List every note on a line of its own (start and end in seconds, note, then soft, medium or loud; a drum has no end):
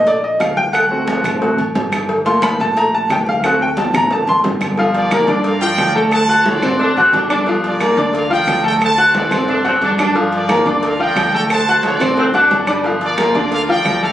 0.00 0.36 A#1 medium
0.07 0.23 D5 medium
0.07 cowbell loud
0.07 high conga soft
0.07 low agogo medium
0.23 0.40 D#5 medium
0.23 high conga soft
0.40 1.19 D2 loud
0.40 0.57 F5 medium
0.40 cowbell medium
0.40 high conga medium
0.40 low timbale medium
0.40 low agogo loud
0.40 claves medium
0.57 0.73 G5 loud
0.57 high conga medium
0.73 1.21 F#5 loud
0.73 cowbell loud
0.73 high conga soft
0.73 low agogo loud
0.73 claves medium
0.90 1.39 A3 medium
0.90 1.39 C4 medium
0.90 1.39 F#4 medium
0.90 high conga soft
1.07 cowbell medium
1.07 high conga loud
1.07 low timbale medium
1.07 low agogo medium
1.24 1.56 A1 loud
1.24 high conga soft
1.24 low conga medium
1.24 low agogo loud
1.24 claves medium
1.41 1.57 A3 medium
1.41 1.56 C4 soft
1.41 1.57 F#4 medium
1.41 cowbell loud
1.41 high conga soft
1.58 1.74 A1 medium
1.58 high conga soft
1.58 low agogo medium
1.75 2.54 G1 loud
1.75 cowbell medium
1.75 high conga medium
1.75 low timbale medium
1.75 low agogo medium
1.92 cowbell medium
1.92 high conga medium
1.92 low agogo loud
1.92 claves medium
2.09 cowbell loud
2.09 high conga soft
2.25 3.39 A3 medium
2.25 3.39 A#3 medium
2.25 3.40 F4 medium
2.25 2.42 C6 medium
2.25 cowbell medium
2.25 high conga soft
2.25 low agogo medium
2.42 2.59 B5 medium
2.42 cowbell medium
2.42 high conga loud
2.42 low timbale medium
2.42 low agogo loud
2.42 claves medium
2.60 3.06 A#1 medium
2.60 2.76 A5 loud
2.60 cowbell medium
2.60 high conga soft
2.76 2.93 A#5 loud
2.76 cowbell loud
2.76 high conga soft
2.76 low agogo medium
2.93 3.10 A5 loud
2.93 high conga soft
3.10 3.88 D2 loud
3.10 3.27 G5 medium
3.10 cowbell medium
3.10 high conga medium
3.10 low timbale medium
3.10 low agogo loud
3.10 claves medium
3.26 3.39 F5 loud
3.26 high conga medium
3.41 3.66 A3 medium
3.41 3.43 F5 medium
3.41 cowbell loud
3.41 high conga soft
3.41 low agogo loud
3.41 claves medium
3.46 3.67 C4 medium
3.46 3.67 F#4 medium
3.46 3.61 F#5 medium
3.60 3.77 G5 medium
3.60 high conga soft
3.77 3.94 A5 medium
3.77 cowbell medium
3.77 high bongo medium
3.77 high conga loud
3.77 low timbale medium
3.77 low agogo medium
3.94 4.25 A1 loud
3.94 4.11 A#5 loud
3.94 high bongo medium
3.94 high conga soft
3.94 low conga medium
3.94 low agogo loud
3.94 claves medium
4.11 4.28 A5 medium
4.11 cowbell loud
4.11 low bongo medium
4.11 high conga soft
4.11 low conga medium
4.27 4.43 A1 medium
4.27 4.38 C6 loud
4.27 low bongo medium
4.27 high conga soft
4.27 low agogo medium
4.44 5.22 G1 loud
4.44 cowbell medium
4.44 low bongo medium
4.44 high conga medium
4.44 low timbale medium
4.44 low agogo medium
4.61 cowbell medium
4.61 low bongo medium
4.61 high conga medium
4.61 low agogo loud
4.61 claves medium
4.77 5.06 F3 medium
4.77 5.06 F4 medium
4.77 5.06 F5 medium
4.77 cowbell loud
4.77 high conga soft
4.94 5.58 F4 medium
4.94 5.45 A#4 medium
4.94 5.41 D5 medium
4.94 cowbell medium
4.94 high conga soft
4.94 low agogo medium
5.11 5.25 A#3 medium
5.11 5.26 A#4 medium
5.11 5.26 A#5 medium
5.11 cowbell medium
5.11 high conga loud
5.11 low timbale medium
5.11 low agogo loud
5.11 claves medium
5.27 5.75 G2 medium
5.27 5.56 D4 medium
5.27 5.56 D5 medium
5.27 5.56 D6 medium
5.27 cowbell medium
5.27 high conga soft
5.44 5.60 A#4 medium
5.44 5.61 D5 medium
5.44 5.60 F5 medium
5.44 cowbell loud
5.44 high conga soft
5.44 low agogo medium
5.61 5.89 F3 medium
5.61 5.89 F4 medium
5.61 6.09 A#4 medium
5.61 6.09 D5 medium
5.61 5.89 F5 medium
5.61 5.92 G5 loud
5.61 high conga soft
5.78 6.57 D2 loud
5.78 cowbell medium
5.78 high conga medium
5.78 low timbale medium
5.78 low agogo loud
5.78 claves medium
5.94 6.23 A3 medium
5.94 6.23 A4 medium
5.94 6.02 G5 loud
5.94 6.23 A5 medium
5.94 high conga medium
6.11 6.77 C5 medium
6.11 6.76 F#5 medium
6.11 6.43 A5 loud
6.11 cowbell loud
6.11 high conga soft
6.11 low agogo loud
6.11 claves medium
6.29 6.56 F#4 medium
6.29 6.57 F#5 medium
6.29 6.57 F#6 medium
6.46 7.10 F#4 medium
6.46 7.10 A4 medium
6.46 6.93 D5 medium
6.46 cowbell medium
6.46 high conga loud
6.46 low timbale medium
6.46 low agogo medium
6.62 6.94 A1 medium
6.62 6.90 C4 medium
6.62 6.91 C5 medium
6.62 6.91 C6 medium
6.62 high conga soft
6.62 low conga medium
6.62 low agogo loud
6.62 claves medium
6.79 6.95 D4 loud
6.79 cowbell loud
6.79 high conga soft
6.96 7.12 A1 medium
6.96 7.14 C4 loud
6.96 7.24 F#4 medium
6.96 7.25 F#5 medium
6.96 7.25 F#6 medium
6.96 high conga soft
6.96 low agogo medium
7.12 7.92 G1 loud
7.12 7.21 D4 loud
7.12 cowbell medium
7.12 high conga medium
7.12 low timbale medium
7.12 low agogo medium
7.30 7.44 D4 medium
7.30 7.54 D4 loud
7.30 7.44 D5 medium
7.30 7.44 D6 medium
7.30 cowbell medium
7.30 high conga medium
7.30 low agogo loud
7.30 claves medium
7.47 7.75 F3 medium
7.47 7.75 F4 medium
7.47 7.75 F5 medium
7.47 cowbell loud
7.47 high conga soft
7.64 8.28 F4 medium
7.64 8.15 A#4 medium
7.64 8.12 D5 medium
7.64 cowbell medium
7.64 high conga soft
7.64 low agogo medium
7.80 7.95 A#3 medium
7.80 7.95 A#4 medium
7.80 7.95 A#5 medium
7.80 cowbell medium
7.80 high conga loud
7.80 low timbale medium
7.80 low agogo loud
7.80 claves medium
7.97 8.44 D2 medium
7.97 8.25 D4 medium
7.97 8.25 D5 medium
7.97 8.25 D6 medium
7.97 cowbell medium
7.97 high conga soft
8.13 8.31 A#4 medium
8.13 8.31 D5 medium
8.13 8.30 F5 loud
8.13 cowbell loud
8.13 high conga soft
8.13 low agogo medium
8.30 8.58 F3 medium
8.30 8.58 F4 loud
8.30 8.79 A#4 medium
8.30 8.78 D5 medium
8.30 8.58 F5 medium
8.30 8.63 G5 loud
8.30 high conga soft
8.47 9.26 D2 loud
8.47 cowbell medium
8.47 high conga medium
8.47 low timbale medium
8.47 low agogo loud
8.47 claves medium
8.64 8.92 A3 medium
8.64 8.92 A4 medium
8.64 8.72 G5 loud
8.64 8.92 A5 medium
8.64 high conga medium
8.81 9.46 C5 medium
8.81 9.46 F#5 medium
8.81 9.14 A5 loud
8.81 cowbell loud
8.81 high conga soft
8.81 low agogo loud
8.81 claves medium
8.98 9.25 F#4 medium
8.98 9.26 F#5 medium
8.98 9.26 F#6 medium
8.98 high conga soft
9.14 9.78 F#4 medium
9.14 9.78 A4 medium
9.14 9.62 D5 medium
9.14 cowbell medium
9.14 high conga loud
9.14 high timbale medium
9.14 low agogo medium
9.31 9.62 F#2 medium
9.31 9.59 C4 medium
9.31 9.59 C5 medium
9.31 9.60 C6 medium
9.31 high conga soft
9.31 low conga medium
9.31 low agogo loud
9.31 claves medium
9.48 9.64 D4 loud
9.48 cowbell loud
9.48 high conga soft
9.48 high timbale medium
9.65 9.81 F#2 medium
9.65 9.74 C4 medium
9.65 9.92 F#4 medium
9.65 9.92 F#5 medium
9.65 9.93 F#6 medium
9.65 high conga soft
9.65 low timbale loud
9.65 low agogo medium
9.81 10.60 G2 loud
9.81 9.91 D4 medium
9.81 cowbell medium
9.81 high conga medium
9.81 low agogo medium
9.98 10.12 D4 medium
9.98 10.23 D4 medium
9.98 10.12 D5 medium
9.98 10.13 D6 medium
9.98 cowbell medium
9.98 high conga medium
9.98 low timbale loud
9.98 low agogo loud
9.98 claves medium
10.15 10.43 F3 medium
10.15 10.43 F4 medium
10.15 10.43 F5 medium
10.15 cowbell loud
10.15 high conga soft
10.32 10.97 F4 medium
10.32 10.83 A#4 medium
10.32 10.81 D5 medium
10.32 cowbell medium
10.32 low agogo medium
10.49 10.63 A#3 medium
10.49 10.63 A#4 medium
10.49 10.63 A#5 medium
10.49 cowbell medium
10.49 high conga loud
10.49 low timbale medium
10.49 low agogo loud
10.49 claves medium
10.66 11.13 D2 medium
10.66 10.94 D4 medium
10.66 10.94 D5 medium
10.66 10.94 D6 medium
10.66 cowbell medium
10.66 high conga soft
10.83 10.99 A#4 medium
10.83 10.98 D5 medium
10.83 11.00 F5 medium
10.83 cowbell loud
10.83 high conga soft
10.83 low agogo medium
10.99 11.27 F3 medium
10.99 11.27 F4 medium
10.99 11.47 A#4 medium
10.99 11.46 D5 medium
10.99 11.28 F5 medium
10.99 11.33 G5 loud
10.99 high conga soft
11.16 11.95 D2 medium
11.16 cowbell medium
11.16 high conga medium
11.16 low timbale medium
11.16 low agogo loud
11.16 claves medium
11.32 11.61 A3 medium
11.32 11.62 A4 medium
11.32 11.41 G5 loud
11.32 11.61 A5 medium
11.32 high conga medium
11.49 12.14 C5 medium
11.49 12.14 F#5 medium
11.49 11.82 A5 loud
11.49 cowbell loud
11.49 high conga soft
11.49 low agogo loud
11.49 claves medium
11.66 11.96 F#4 medium
11.66 11.96 F#5 medium
11.66 11.96 F#6 medium
11.66 high conga soft
11.83 12.47 F#4 medium
11.83 12.47 A4 medium
11.83 12.31 D5 medium
11.83 cowbell medium
11.83 high conga loud
11.83 low timbale medium
11.83 low agogo medium
12.00 12.31 A1 medium
12.00 12.28 C4 medium
12.00 12.29 C5 medium
12.00 12.29 C6 medium
12.00 high conga soft
12.00 low conga medium
12.00 low agogo loud
12.00 claves medium
12.17 12.26 C4 loud
12.17 cowbell loud
12.17 high conga soft
12.17 low conga medium
12.33 12.49 A1 medium
12.33 12.65 D4 loud
12.33 12.62 F#4 medium
12.33 12.62 F#5 medium
12.33 12.62 F#6 medium
12.33 high conga soft
12.33 low agogo medium
12.51 13.29 G1 loud
12.51 cowbell medium
12.51 high conga medium
12.51 low timbale medium
12.51 low agogo medium
12.67 12.93 G3 medium
12.67 12.81 D4 medium
12.67 12.82 D5 medium
12.67 12.82 D6 medium
12.67 cowbell medium
12.67 high conga medium
12.67 low agogo loud
12.67 claves medium
12.84 13.13 F3 medium
12.84 13.13 F4 medium
12.84 13.13 F5 medium
12.84 cowbell loud
12.84 high conga soft
13.01 13.65 F4 medium
13.01 13.52 A#4 medium
13.01 13.50 D5 medium
13.01 cowbell medium
13.01 high conga soft
13.01 low agogo medium
13.18 13.32 A#3 medium
13.18 13.32 A#4 medium
13.18 13.32 A#5 medium
13.18 cowbell medium
13.18 high conga loud
13.18 low timbale medium
13.18 low agogo loud
13.18 claves medium
13.35 13.82 D2 medium
13.35 13.63 D4 medium
13.35 13.63 D5 medium
13.35 13.63 D6 medium
13.35 cowbell medium
13.35 high conga soft
13.51 13.69 A#4 medium
13.51 13.69 D5 medium
13.51 13.60 F5 loud
13.51 cowbell loud
13.51 high conga soft
13.51 low agogo medium
13.69 13.96 F3 medium
13.69 13.97 F4 medium
13.69 14.12 A#4 medium
13.69 14.12 D5 medium
13.69 13.97 F5 loud
13.69 14.01 G5 loud
13.69 high conga soft
13.85 14.12 D2 loud
13.85 cowbell medium
13.85 high conga medium
13.85 low timbale medium
13.85 low agogo loud
13.85 claves medium
14.03 14.12 A3 medium
14.03 14.12 A4 medium
14.03 14.12 F5 medium
14.03 14.12 A5 medium
14.03 high conga medium